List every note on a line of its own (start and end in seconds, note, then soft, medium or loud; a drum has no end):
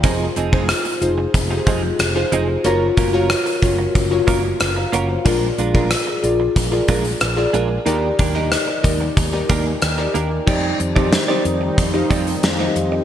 0.00 0.27 F1 loud
0.00 0.25 F3 medium
0.00 0.45 D#4 medium
0.00 0.46 F4 medium
0.00 0.19 A#4 soft
0.00 0.19 D#5 medium
0.00 kick loud
0.00 closed hi-hat medium
0.04 0.25 C4 medium
0.04 0.25 D#4 medium
0.04 0.46 G#4 medium
0.04 0.25 G#4 medium
0.04 0.46 C5 medium
0.36 0.72 F1 medium
0.36 0.53 F3 medium
0.36 0.53 C4 medium
0.36 0.52 D#4 medium
0.36 0.52 G#4 medium
0.36 closed hi-hat medium
0.52 0.68 F3 soft
0.52 0.68 C4 medium
0.52 0.94 D#4 medium
0.52 0.69 D#4 medium
0.52 0.94 F4 medium
0.52 0.69 G#4 medium
0.52 0.95 G#4 medium
0.52 0.95 C5 medium
0.52 kick medium
0.69 muted clean electric guitar stroke soft
0.69 cross-stick loud
0.69 closed hi-hat medium
0.85 muted clean electric guitar stroke soft
0.85 closed hi-hat soft
1.01 1.25 F1 medium
1.01 1.43 D#4 medium
1.01 1.43 F4 medium
1.01 1.43 G#4 medium
1.01 1.44 C5 medium
1.01 closed hi-hat medium
1.18 muted clean electric guitar stroke soft
1.34 1.58 F1 medium
1.34 muted clean electric guitar stroke soft
1.34 kick medium
1.34 closed hi-hat medium
1.50 2.06 D#4 medium
1.50 2.06 F4 medium
1.50 1.57 G4 medium
1.50 2.07 C5 medium
1.50 muted clean electric guitar stroke soft
1.57 2.10 G#4 medium
1.67 1.90 F1 medium
1.67 1.88 F3 medium
1.67 1.83 C4 medium
1.67 1.83 D#4 medium
1.67 1.82 G#4 medium
1.67 kick medium
1.67 closed hi-hat medium
1.83 muted clean electric guitar stroke soft
1.99 2.23 F1 medium
1.99 muted clean electric guitar stroke soft
1.99 cross-stick loud
1.99 closed hi-hat medium
2.15 2.57 D#4 medium
2.15 2.57 F4 medium
2.15 2.58 G#4 medium
2.15 2.58 C5 medium
2.15 muted clean electric guitar stroke soft
2.32 2.56 F1 medium
2.32 2.53 F3 medium
2.32 2.49 C4 medium
2.32 2.48 D#4 medium
2.32 2.47 G#4 medium
2.32 closed hi-hat medium
2.49 muted clean electric guitar stroke soft
2.64 2.88 F#1 medium
2.64 2.86 A#3 medium
2.64 2.86 C#4 medium
2.64 3.06 F4 medium
2.64 2.86 F4 medium
2.64 3.06 F#4 medium
2.64 3.06 A#4 medium
2.64 2.86 A#4 medium
2.64 3.07 C#5 medium
2.64 closed hi-hat medium
2.97 3.33 F#1 medium
2.97 3.14 A#3 medium
2.97 3.13 C#4 medium
2.97 3.13 F4 medium
2.97 3.12 A#4 medium
2.97 kick medium
2.97 closed hi-hat medium
3.13 3.28 A#3 soft
3.13 3.29 C#4 soft
3.13 3.55 F4 medium
3.13 3.29 F4 medium
3.13 3.55 F#4 medium
3.13 3.30 A#4 medium
3.13 3.55 A#4 medium
3.13 3.56 C#5 medium
3.30 muted clean electric guitar stroke soft
3.30 cross-stick loud
3.30 closed hi-hat medium
3.46 muted clean electric guitar stroke soft
3.46 closed hi-hat soft
3.62 3.86 F#1 medium
3.62 4.04 F4 medium
3.62 4.04 F#4 medium
3.62 4.04 A#4 medium
3.62 4.05 C#5 medium
3.62 kick medium
3.62 closed hi-hat medium
3.78 muted clean electric guitar stroke soft
3.95 4.19 F#1 loud
3.95 muted clean electric guitar stroke soft
3.95 kick medium
3.95 closed hi-hat medium
4.11 4.67 F4 medium
4.11 4.67 F#4 medium
4.11 4.67 A#4 medium
4.11 4.28 C#5 medium
4.11 muted clean electric guitar stroke soft
4.27 4.51 F#1 medium
4.27 4.48 A#3 medium
4.27 4.44 C#4 medium
4.27 4.43 F4 medium
4.27 4.42 A#4 loud
4.27 kick medium
4.27 closed hi-hat medium
4.44 muted clean electric guitar stroke soft
4.60 4.84 F#1 loud
4.60 muted clean electric guitar stroke soft
4.60 cross-stick loud
4.60 closed hi-hat medium
4.76 4.93 F5 medium
4.76 4.92 A#5 medium
4.76 muted clean electric guitar stroke soft
4.92 5.17 F#1 medium
4.92 5.14 A#3 medium
4.92 5.09 C#4 medium
4.92 5.08 F4 medium
4.92 5.08 A#4 medium
4.92 5.09 C#5 medium
4.92 5.09 F#5 medium
4.92 closed hi-hat medium
5.09 5.41 C5 soft
5.09 5.40 F5 medium
5.09 muted clean electric guitar stroke soft
5.25 5.49 A#1 loud
5.25 6.20 A#2 medium
5.25 5.46 G#3 medium
5.25 5.47 D4 medium
5.25 5.67 F4 medium
5.25 5.47 F4 medium
5.25 5.67 G#4 medium
5.25 5.67 A#4 medium
5.25 5.47 A#4 medium
5.25 5.68 D5 medium
5.25 kick loud
5.25 closed hi-hat medium
5.58 5.94 A#1 loud
5.58 5.75 G#3 medium
5.58 5.74 D4 medium
5.58 5.74 F4 medium
5.58 5.73 A#4 medium
5.58 closed hi-hat medium
5.74 5.90 G#3 soft
5.74 5.90 D4 medium
5.74 6.16 F4 medium
5.74 5.91 F4 medium
5.74 6.16 G#4 medium
5.74 5.91 A#4 medium
5.74 6.16 A#4 medium
5.74 6.17 D5 medium
5.74 kick medium
5.91 muted clean electric guitar stroke soft
5.91 cross-stick loud
5.91 closed hi-hat medium
6.07 muted clean electric guitar stroke medium
6.23 6.47 A#1 medium
6.23 6.65 F4 medium
6.23 6.65 G#4 medium
6.23 6.65 A#4 medium
6.23 6.65 D5 medium
6.23 closed hi-hat medium
6.40 muted clean electric guitar stroke soft
6.56 6.80 A#1 loud
6.56 muted clean electric guitar stroke soft
6.56 kick medium
6.56 closed hi-hat medium
6.72 7.28 F4 medium
6.72 7.28 G#4 medium
6.72 7.28 A#4 medium
6.72 7.28 D5 medium
6.72 muted clean electric guitar stroke soft
6.88 7.12 A#1 medium
6.88 7.10 G#3 medium
6.88 7.05 D4 medium
6.88 7.04 F4 medium
6.88 7.04 A#4 loud
6.88 kick medium
6.88 closed hi-hat medium
7.05 muted clean electric guitar stroke soft
7.05 closed hi-hat soft
7.21 7.45 A#1 medium
7.21 muted clean electric guitar stroke soft
7.21 cross-stick loud
7.21 closed hi-hat medium
7.37 7.79 F4 medium
7.37 7.79 G#4 medium
7.37 7.79 A#4 medium
7.37 7.79 D5 medium
7.37 muted clean electric guitar stroke soft
7.53 7.77 A#1 medium
7.53 7.75 G#3 medium
7.53 7.70 D4 medium
7.53 7.69 F4 medium
7.53 7.68 A#4 medium
7.53 closed hi-hat medium
7.70 muted clean electric guitar stroke soft
7.86 8.10 D#2 loud
7.86 8.80 D#3 medium
7.86 8.07 A#3 medium
7.86 8.07 D4 medium
7.86 8.28 D#4 medium
7.86 8.28 G4 medium
7.86 8.08 G4 medium
7.86 8.28 A#4 medium
7.86 8.08 A#4 medium
7.86 8.28 D5 medium
7.86 closed hi-hat loud
8.19 8.55 D#2 medium
8.19 8.35 A#3 medium
8.19 8.35 D4 medium
8.19 8.34 G4 medium
8.19 8.34 A#4 medium
8.19 kick medium
8.19 closed hi-hat medium
8.35 8.50 A#3 soft
8.35 8.50 D4 medium
8.35 8.77 D#4 medium
8.35 8.77 G4 medium
8.35 8.51 G4 medium
8.35 8.51 A#4 medium
8.35 8.77 A#4 medium
8.35 8.77 D#5 medium
8.52 cross-stick loud
8.52 closed hi-hat medium
8.68 muted clean electric guitar stroke soft
8.83 9.08 D#2 medium
8.83 9.25 D#4 medium
8.83 9.26 G4 medium
8.83 9.26 A#4 medium
8.83 9.00 D5 medium
8.83 8.99 D#5 medium
8.83 kick medium
8.83 closed hi-hat medium
9.01 9.16 D5 medium
9.01 muted clean electric guitar stroke soft
9.17 9.41 D#2 loud
9.17 9.47 D#5 medium
9.17 muted clean electric guitar stroke soft
9.17 kick medium
9.17 closed hi-hat medium
9.32 9.88 D#4 medium
9.32 9.89 G4 medium
9.32 9.89 A#4 medium
9.32 9.89 D5 medium
9.32 muted clean electric guitar stroke soft
9.49 9.73 D#2 medium
9.49 9.70 A#3 medium
9.49 9.66 D4 medium
9.49 9.65 G4 medium
9.49 9.65 A#4 medium
9.49 9.65 G5 medium
9.49 kick medium
9.49 closed hi-hat medium
9.66 9.81 G#5 medium
9.66 muted clean electric guitar stroke soft
9.82 10.06 D#2 loud
9.82 10.13 G5 medium
9.82 muted clean electric guitar stroke soft
9.82 cross-stick loud
9.82 closed hi-hat medium
9.98 10.40 D#4 medium
9.98 10.40 G4 medium
9.98 10.40 A#4 medium
9.98 10.40 D5 medium
9.98 muted clean electric guitar stroke soft
10.14 10.38 D#2 medium
10.14 10.35 A#3 medium
10.14 10.31 D4 medium
10.14 10.30 G4 medium
10.14 10.30 A#4 medium
10.14 10.45 A#5 medium
10.14 closed hi-hat medium
10.31 muted clean electric guitar stroke soft
10.46 10.71 F2 loud
10.46 13.04 D#3 medium
10.46 13.04 G3 medium
10.46 10.77 C4 medium
10.46 13.04 C4 medium
10.46 10.89 D#4 medium
10.46 13.04 D#4 medium
10.46 10.78 D#4 medium
10.46 10.89 G4 medium
10.46 10.78 G4 medium
10.46 10.89 C5 medium
10.46 10.89 D5 medium
10.46 10.78 D5 medium
10.46 kick loud
10.46 crash medium
10.80 11.15 F2 medium
10.80 muted clean electric guitar stroke soft
10.80 closed hi-hat medium
10.96 11.11 C4 medium
10.96 11.24 D#4 medium
10.96 11.11 D#4 medium
10.96 11.12 G4 medium
10.96 11.24 G4 medium
10.96 11.24 C5 medium
10.96 11.12 D5 medium
10.96 11.25 D5 medium
10.96 kick medium
11.12 muted clean electric guitar stroke soft
11.12 snare loud
11.12 closed hi-hat medium
11.28 11.44 C4 medium
11.28 11.84 D#4 medium
11.28 11.44 D#4 medium
11.28 11.44 G4 medium
11.28 11.85 G4 medium
11.28 11.85 C5 medium
11.28 11.45 D5 medium
11.28 11.85 D5 medium
11.45 11.69 F2 loud
11.45 muted clean electric guitar stroke soft
11.45 closed hi-hat medium
11.61 muted clean electric guitar stroke soft
11.78 12.02 F2 loud
11.78 kick medium
11.78 closed hi-hat medium
11.94 12.49 D#4 medium
11.94 12.50 G4 medium
11.94 12.50 C5 medium
11.94 12.50 F5 medium
11.94 muted clean electric guitar stroke soft
12.10 12.34 F2 medium
12.10 12.31 C4 medium
12.10 12.27 D#4 medium
12.10 12.26 G4 medium
12.10 12.25 D5 medium
12.10 kick medium
12.10 closed hi-hat medium
12.27 muted clean electric guitar stroke soft
12.27 closed hi-hat soft
12.43 12.67 F2 loud
12.43 muted clean electric guitar stroke soft
12.43 snare loud
12.43 closed hi-hat medium
12.59 13.01 D#4 medium
12.59 13.01 G4 medium
12.59 13.01 C5 medium
12.59 13.01 D#5 medium
12.59 muted clean electric guitar stroke medium
12.76 12.99 F2 medium
12.76 closed hi-hat medium
12.92 muted clean electric guitar stroke soft